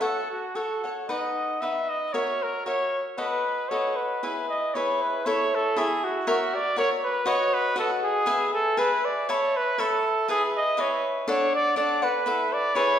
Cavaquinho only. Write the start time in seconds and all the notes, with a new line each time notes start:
0.01 F#4 A4 C#5 F#5
0.55 F#4 A4 C#5 F#5
0.84 A4 C#5 F#5
1.09 D#4 B4 D#5 F#5
1.62 D#4 B4 D#5 F#5
2.14 F#4 A#4 C#5 E5
2.66 F#4 A#4 C#5 E5
3.18 F#4 A4 B4 D#5
3.71 F#4 A4 B4 D#5
4.23 E4 G#4 B4 E5
4.75 E4 G#4 B4 E5
5.26 E4 A4 C#5 E5
5.76 E4 A4 C#5 E5
6.27 F#4 A#4 C#5 E5
6.76 F#4 A#4 C#5 E5
7.26 F#4 B4 D#5 F#5
7.76 F#4 B4 D#5 F#5
8.26 G#4 B4 E5 G#5
8.77 G#4 B4 E5 G#5
9.29 C#5 E5 A5 B5
9.78 C#5 E5 A5 B5
10.28 E4 G#4 B4 E5
10.77 E4 G#4 B4 E5
11.28 D4 A4 D5 F#5
11.76 D4 A4 D5 F#5
12.02 A4 D5 F#5
12.26 E4 A4 B4 E5
12.75 E4 G#4 B4 E5